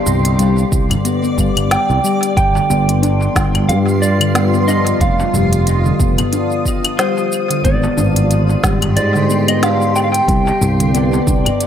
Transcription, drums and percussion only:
0.06 darbuka ka, darbuka dum, shaker
0.25 closed hi-hat, shaker
0.39 closed hi-hat, shaker
0.58 darbuka ka, shaker
0.72 kick, shaker
0.90 closed hi-hat, darbuka ka, darbuka tek, darbuka dum, claves, shaker
1.05 closed hi-hat, shaker
1.24 shaker
1.38 kick, shaker
1.57 closed hi-hat, darbuka ka, claves, shaker
1.71 snare, closed hi-hat, shaker
1.90 darbuka ka, shaker
2.04 shaker
2.23 closed hi-hat, shaker
2.37 kick, closed hi-hat, shaker
2.55 darbuka tek, shaker
2.70 darbuka ka, darbuka dum, shaker
2.89 closed hi-hat, shaker
3.03 closed hi-hat, shaker
3.21 darbuka tek, shaker
3.36 kick, snare, shaker
3.54 closed hi-hat, darbuka ka, darbuka tek, darbuka dum, claves, shaker
3.69 closed hi-hat, shaker
3.88 darbuka ka, shaker
4.03 shaker
4.21 closed hi-hat, claves, shaker
4.35 snare, closed hi-hat, shaker
4.54 shaker
4.68 darbuka tek, shaker
4.87 closed hi-hat, shaker
5.01 kick, closed hi-hat, shaker
5.20 darbuka tek, shaker
5.34 darbuka ka, darbuka dum, shaker
5.53 closed hi-hat, shaker
5.67 closed hi-hat, shaker
5.85 darbuka ka, shaker
6.00 kick, shaker
6.18 closed hi-hat, darbuka ka, darbuka tek, darbuka dum, claves, shaker
6.33 closed hi-hat, shaker
6.52 shaker
6.66 kick, shaker
6.85 closed hi-hat, darbuka ka, claves, shaker
6.99 snare, closed hi-hat, shaker
7.17 darbuka ka, shaker
7.32 shaker
7.51 closed hi-hat, shaker
7.64 kick, closed hi-hat, shaker
7.83 darbuka tek, shaker
7.97 darbuka ka, darbuka dum, shaker
8.16 closed hi-hat, shaker
8.31 closed hi-hat, shaker
8.49 darbuka tek, shaker
8.63 kick, snare, shaker
8.82 closed hi-hat, darbuka ka, darbuka tek, darbuka dum, claves, shaker
8.97 closed hi-hat, shaker
9.15 darbuka ka, shaker
9.30 shaker
9.48 closed hi-hat, claves, shaker
9.63 snare, closed hi-hat, shaker
9.82 shaker
9.96 darbuka tek, shaker
10.14 closed hi-hat, shaker
10.28 kick, closed hi-hat, shaker
10.47 darbuka tek, shaker
10.61 darbuka ka, darbuka dum, shaker
10.80 closed hi-hat, shaker
10.95 closed hi-hat, shaker
11.13 darbuka ka, darbuka tek, shaker
11.27 kick, shaker
11.45 closed hi-hat, darbuka ka, darbuka tek, darbuka dum, claves, shaker
11.61 closed hi-hat, shaker

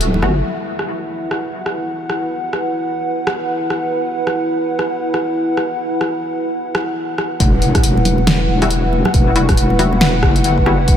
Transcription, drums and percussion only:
0.01 closed hi-hat
0.14 low conga
0.22 cross-stick, high conga
0.79 cross-stick
1.31 cross-stick
1.66 cross-stick
2.10 cross-stick
2.53 cross-stick
3.27 cross-stick
3.70 cross-stick
4.27 cross-stick
4.79 cross-stick
5.14 cross-stick
5.57 cross-stick
6.01 cross-stick
6.75 cross-stick
7.18 cross-stick
7.40 kick, closed hi-hat
7.62 closed hi-hat
7.75 kick, cross-stick, closed hi-hat
7.84 closed hi-hat
7.97 high conga
8.05 open hi-hat, low conga
8.18 high conga
8.27 cross-stick, snare, closed hi-hat
8.62 cross-stick, closed hi-hat
8.71 closed hi-hat
8.93 high conga
9.05 cross-stick, low conga
9.14 kick, closed hi-hat
9.36 closed hi-hat
9.49 kick, cross-stick, closed hi-hat
9.57 closed hi-hat
9.70 high conga
9.79 open hi-hat, low conga
9.93 high conga
10.01 snare, closed hi-hat
10.23 kick, cross-stick
10.36 closed hi-hat
10.44 closed hi-hat
10.58 kick
10.66 cross-stick, high conga
10.88 kick, closed hi-hat

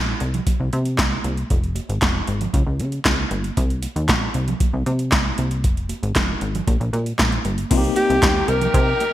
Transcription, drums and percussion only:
0.20 closed hi-hat
0.34 closed hi-hat, low conga
0.47 kick, closed hi-hat, muted conga
0.73 closed hi-hat, muted conga
0.85 closed hi-hat
0.98 kick, snare, clap, closed hi-hat, high conga
1.24 closed hi-hat, high conga
1.37 closed hi-hat
1.50 kick, closed hi-hat, muted conga
1.64 closed hi-hat
1.75 closed hi-hat, muted conga
1.90 closed hi-hat
2.01 kick, snare, clap, closed hi-hat, high conga
2.27 closed hi-hat
2.41 closed hi-hat, low conga
2.54 kick, closed hi-hat, muted conga
2.80 closed hi-hat, muted conga
2.92 closed hi-hat
3.05 kick, snare, clap, closed hi-hat, high conga
3.31 closed hi-hat, high conga
3.44 closed hi-hat
3.57 kick, closed hi-hat, muted conga
3.70 closed hi-hat
3.82 closed hi-hat, muted conga
3.96 closed hi-hat
4.08 kick, snare, clap, closed hi-hat, high conga
4.34 closed hi-hat
4.48 closed hi-hat, low conga
4.60 kick, closed hi-hat, muted conga
4.86 closed hi-hat, muted conga
4.99 closed hi-hat
5.11 kick, snare, clap, closed hi-hat, high conga
5.38 closed hi-hat, high conga
5.51 closed hi-hat
5.64 kick, closed hi-hat
5.77 closed hi-hat
5.89 closed hi-hat, muted conga
6.03 closed hi-hat
6.15 kick, snare, clap, closed hi-hat, high conga
6.41 closed hi-hat
6.55 closed hi-hat, low conga
6.67 kick, closed hi-hat, muted conga
6.81 closed hi-hat
6.93 closed hi-hat, muted conga
7.06 closed hi-hat
7.18 kick, snare, clap, closed hi-hat, high conga
7.32 closed hi-hat
7.45 closed hi-hat, high conga
7.58 closed hi-hat
7.71 kick, closed hi-hat, crash, muted conga
7.84 closed hi-hat
7.96 closed hi-hat, muted conga
8.10 closed hi-hat
8.22 kick, snare, clap, closed hi-hat, high conga
8.48 closed hi-hat
8.61 closed hi-hat, low conga
8.74 kick, closed hi-hat, muted conga
9.00 closed hi-hat, muted conga

